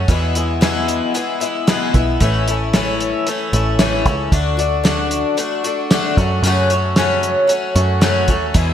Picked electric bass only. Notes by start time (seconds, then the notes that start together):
0.08 E2
1.94 B1
2.21 A1
3.53 A1
4.06 C#2
4.32 D2
6.17 F#2
6.42 F#2
7.75 F#2
8.28 D#2
8.55 E2